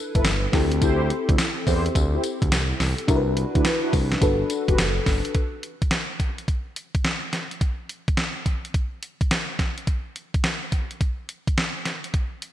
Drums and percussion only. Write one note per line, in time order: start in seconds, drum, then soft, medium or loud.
0.15 kick loud
0.15 closed hi-hat medium
0.25 snare loud
0.25 closed hi-hat medium
0.25 tambourine loud
0.53 kick medium
0.53 snare medium
0.53 open hi-hat medium
0.53 tambourine medium
0.72 closed hi-hat medium
0.82 kick loud
0.82 closed hi-hat medium
0.82 tambourine medium
1.10 closed hi-hat medium
1.29 kick loud
1.29 closed hi-hat medium
1.38 snare loud
1.38 closed hi-hat medium
1.38 tambourine loud
1.67 kick medium
1.67 open hi-hat medium
1.67 tambourine medium
1.86 closed hi-hat medium
1.95 kick medium
1.95 closed hi-hat medium
1.95 tambourine medium
2.24 closed hi-hat medium
2.24 tambourine medium
2.42 kick loud
2.42 closed hi-hat medium
2.52 snare loud
2.52 closed hi-hat medium
2.52 tambourine medium
2.80 snare medium
2.80 open hi-hat medium
2.80 tambourine medium
2.98 closed hi-hat medium
3.08 kick loud
3.08 closed hi-hat medium
3.08 tambourine medium
3.37 closed hi-hat medium
3.55 kick loud
3.55 closed hi-hat medium
3.65 snare loud
3.65 closed hi-hat medium
3.65 tambourine medium
3.93 kick medium
3.93 open hi-hat medium
3.93 tambourine medium
4.12 snare medium
4.12 closed hi-hat medium
4.22 kick loud
4.22 closed hi-hat medium
4.22 tambourine medium
4.50 closed hi-hat medium
4.50 tambourine medium
4.68 kick medium
4.68 closed hi-hat medium
4.78 snare loud
4.78 closed hi-hat medium
4.78 tambourine loud
5.06 kick medium
5.06 snare medium
5.06 open hi-hat medium
5.06 tambourine medium
5.25 closed hi-hat medium
5.35 kick loud
5.35 closed hi-hat medium
5.63 closed hi-hat medium
5.82 kick medium
5.82 closed hi-hat medium
5.91 snare loud
5.91 closed hi-hat medium
6.20 kick medium
6.20 closed hi-hat medium
6.38 closed hi-hat medium
6.48 kick medium
6.48 closed hi-hat medium
6.76 closed hi-hat medium
6.95 kick medium
6.95 closed hi-hat medium
7.04 snare loud
7.04 closed hi-hat medium
7.33 snare medium
7.33 closed hi-hat medium
7.51 closed hi-hat soft
7.61 kick loud
7.61 closed hi-hat medium
7.89 closed hi-hat medium
8.08 kick medium
8.08 closed hi-hat soft
8.17 snare loud
8.17 closed hi-hat medium
8.46 kick medium
8.46 closed hi-hat medium
8.65 closed hi-hat soft
8.74 kick medium
8.74 closed hi-hat medium
9.03 closed hi-hat medium
9.21 kick medium
9.21 closed hi-hat medium
9.31 snare loud
9.31 closed hi-hat medium
9.59 kick medium
9.59 snare medium
9.59 closed hi-hat medium
9.78 closed hi-hat medium
9.87 kick medium
9.87 closed hi-hat medium
10.16 closed hi-hat medium
10.34 kick medium
10.34 closed hi-hat soft
10.44 snare medium
10.44 closed hi-hat medium
10.72 kick medium
10.72 closed hi-hat medium
10.91 closed hi-hat soft
11.01 kick medium
11.01 closed hi-hat medium
11.29 closed hi-hat medium
11.47 kick medium
11.47 closed hi-hat medium
11.58 snare loud
11.58 closed hi-hat medium
11.85 snare medium
11.85 closed hi-hat medium
12.04 closed hi-hat medium
12.14 kick medium
12.14 closed hi-hat medium
12.42 closed hi-hat medium